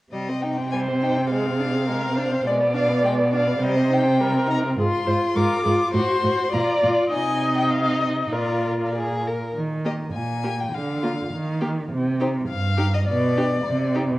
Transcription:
0.12 2.42 C3 soft
0.12 0.31 G3 soft
0.12 0.43 D#5 soft
0.29 0.45 C4 soft
0.41 0.59 D#4 soft
0.41 0.71 G5 soft
0.58 0.75 C4 soft
0.72 0.89 G3 soft
0.72 1.26 C5 soft
0.72 0.80 G#5 soft
0.88 1.04 C4 soft
1.01 1.19 D#4 soft
1.01 1.29 G5 soft
1.18 1.31 C4 soft
1.29 1.47 G#3 soft
1.29 1.87 G#4 soft
1.29 2.44 F5 medium
1.45 1.61 C4 soft
1.59 1.76 D4 soft
1.74 1.90 C4 soft
1.88 2.04 G#3 soft
1.88 2.18 A#4 soft
2.02 2.19 C4 soft
2.16 2.33 D4 soft
2.16 2.48 C5 soft
2.32 2.45 C4 soft
2.46 3.60 B2 soft
2.46 2.61 G#3 soft
2.46 3.61 D5 medium
2.46 2.55 D5 medium
2.60 2.76 B3 soft
2.74 2.90 D4 soft
2.74 3.04 F5 medium
2.89 3.04 B3 soft
3.03 3.20 G#3 soft
3.03 3.13 G5 medium
3.18 3.35 B3 soft
3.33 3.48 D4 soft
3.33 3.65 F5 medium
3.47 3.60 B3 soft
3.61 4.76 C3 medium
3.61 3.78 G3 soft
3.61 4.22 C5 medium
3.61 3.94 D#5 medium
3.76 3.91 C4 soft
3.90 4.06 D#4 soft
3.90 4.50 G5 medium
4.05 4.22 C4 soft
4.21 4.35 G3 soft
4.21 4.78 A#4 medium
4.34 4.49 C4 soft
4.48 4.65 D#4 soft
4.48 4.59 A#5 medium
4.64 4.78 C4 soft
4.77 4.85 G#2 medium
4.77 5.07 F4 medium
4.77 4.87 G#4 medium
4.77 5.38 C6 medium
5.07 5.15 G#2 soft
5.07 5.36 F4 soft
5.07 5.15 C5 medium
5.35 5.44 G#2 medium
5.35 5.65 F4 medium
5.35 5.63 A#4 medium
5.35 5.93 D6 medium
5.64 5.73 G#2 medium
5.64 5.93 F4 soft
5.64 5.72 G#4 medium
5.93 6.02 A2 medium
5.93 6.23 F#4 medium
5.93 6.51 C5 medium
5.93 6.55 C6 medium
6.24 6.32 A2 medium
6.24 6.52 F#4 soft
6.52 6.62 A#2 medium
6.52 6.82 F4 medium
6.52 7.10 D5 medium
6.52 6.83 A#5 medium
6.82 6.91 A#2 medium
6.82 7.11 F4 soft
7.12 8.29 C3 soft
7.12 8.35 D#4 soft
7.12 8.34 D#5 medium
7.12 7.54 G#5 medium
7.58 7.71 G5 medium
7.71 8.00 F5 medium
8.01 8.09 D#5 soft
8.32 9.32 A#2 soft
8.32 8.88 F4 soft
8.32 9.24 A#4 soft
8.32 8.92 D5 soft
8.95 9.29 G#4 soft
9.27 9.56 A#4 soft
9.54 10.04 D#3 soft
9.85 9.93 A#3 soft
9.85 9.93 G4 soft
9.85 9.94 D#5 soft
10.14 10.63 A#2 soft
10.14 10.62 G#5 medium
10.43 10.51 A#3 soft
10.43 10.52 G4 soft
10.60 10.76 G5 soft
10.73 11.22 D3 medium
10.73 11.62 F5 medium
11.03 11.11 A#3 soft
11.03 11.11 F4 soft
11.33 11.82 D#3 soft
11.61 11.69 A#3 soft
11.61 11.69 G4 soft
11.92 12.41 C3 medium
12.20 12.28 D#4 soft
12.20 12.28 G4 soft
12.20 12.29 C5 medium
12.49 12.99 G2 medium
12.49 12.95 F5 medium
12.77 12.86 D#4 soft
12.77 12.85 G4 soft
12.94 13.07 D#5 medium
13.08 13.57 B2 medium
13.08 13.94 D5 medium
13.36 13.44 D4 soft
13.36 13.45 G4 soft
13.66 14.15 C3 medium
13.95 14.03 D#4 medium
13.95 14.03 G4 soft

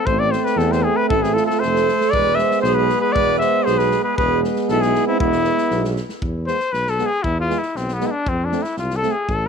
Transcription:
0.06 0.35 A1 medium
0.06 2.14 A3 medium
0.06 1.88 C4 medium
0.06 0.21 C5 loud
0.06 kick medium
0.19 0.33 D5 medium
0.31 0.46 C5 medium
0.31 snare soft
0.45 0.59 B4 medium
0.45 snare soft
0.57 0.86 E2 loud
0.57 0.73 A4 medium
0.57 snare soft
0.72 0.86 C5 medium
0.72 snare soft
0.84 0.98 G#4 medium
0.96 1.08 B4 loud
1.09 1.38 A1 medium
1.09 1.23 E4 medium
1.09 1.24 A4 medium
1.09 kick loud
1.23 1.36 E4 medium
1.23 1.35 G#4 medium
1.23 snare soft
1.34 1.48 F4 medium
1.34 1.46 A4 medium
1.34 snare soft
1.46 1.61 A4 medium
1.46 snare soft
1.51 1.64 F4 medium
1.60 1.90 F1 medium
1.60 2.16 A4 medium
1.60 2.12 C5 medium
1.60 snare soft
1.76 snare soft
1.88 snare soft
2.01 snare soft
2.10 2.41 E1 medium
2.10 4.17 G#3 medium
2.10 4.14 B3 medium
2.10 2.42 B4 medium
2.10 2.36 D5 loud
2.10 kick medium
2.35 2.61 E5 medium
2.35 snare soft
2.40 2.64 C5 medium
2.51 snare soft
2.62 2.92 B1 loud
2.62 2.78 G#4 medium
2.62 2.76 C5 medium
2.62 snare soft
2.75 3.02 G#4 medium
2.75 3.00 B4 medium
2.89 snare soft
3.01 3.16 G#4 medium
3.01 3.14 B4 loud
3.12 3.44 E1 medium
3.12 3.40 B4 medium
3.12 3.38 D5 loud
3.12 kick medium
3.38 3.68 C5 medium
3.38 3.66 E5 medium
3.38 snare soft
3.65 3.95 B1 loud
3.65 3.78 G#4 medium
3.65 3.80 C5 medium
3.65 snare soft
3.78 4.03 G#4 medium
3.78 4.03 B4 medium
3.78 snare soft
3.91 snare soft
4.03 4.16 G#4 medium
4.03 4.16 B4 medium
4.16 4.47 E1 medium
4.16 5.98 G#3 medium
4.16 5.99 B3 medium
4.16 4.42 G#4 medium
4.16 4.41 B4 medium
4.16 kick medium
4.44 snare soft
4.56 snare soft
4.69 4.97 B1 medium
4.69 4.84 E4 medium
4.69 4.83 A4 medium
4.69 snare soft
4.81 5.07 E4 medium
4.81 5.07 G#4 medium
4.81 snare soft
4.95 snare soft
5.07 5.19 C4 medium
5.07 5.19 E4 medium
5.19 5.49 E1 medium
5.19 5.93 B3 medium
5.19 5.92 E4 loud
5.19 kick loud
5.32 snare soft
5.44 snare soft
5.58 snare soft
5.71 6.00 B1 loud
5.71 snare soft
5.85 snare soft
5.96 snare soft
6.09 snare soft
6.22 6.51 E2 medium
6.22 kick medium
6.47 6.57 G#3 soft
6.47 6.58 B3 medium
6.47 6.74 C5 medium
6.47 snare soft
6.60 snare soft
6.72 7.01 B1 medium
6.72 6.91 B4 medium
6.72 snare soft
6.87 7.07 A4 medium
6.87 snare soft
6.98 7.09 G#3 medium
6.98 7.09 B3 medium
6.98 snare soft
7.06 7.24 G#4 loud
7.23 7.53 E2 medium
7.23 7.40 E4 medium
7.23 kick medium
7.40 7.60 F4 medium
7.49 7.59 G#3 medium
7.49 7.59 B3 medium
7.49 snare soft
7.59 7.78 E4 medium
7.63 snare soft
7.75 8.04 B1 medium
7.75 7.95 C4 medium
7.75 snare soft
7.88 snare soft
7.93 8.08 B3 medium
8.00 8.10 G#3 medium
8.00 8.11 B3 medium
8.00 snare soft
8.06 8.12 E4 medium
8.11 8.30 D4 medium
8.26 8.55 F2 medium
8.26 8.46 C4 medium
8.26 kick medium
8.45 8.64 D4 medium
8.52 8.62 A3 medium
8.52 8.62 C4 medium
8.52 snare soft
8.62 8.78 E4 medium
8.62 snare soft
8.77 9.05 C2 medium
8.77 8.98 F4 medium
8.77 snare soft
8.90 snare soft
8.96 9.13 A4 medium
9.03 9.13 A3 medium
9.03 9.13 C4 medium
9.03 snare soft
9.11 9.31 G#4 medium
9.28 9.48 A1 medium
9.28 9.48 A4 medium
9.28 kick medium

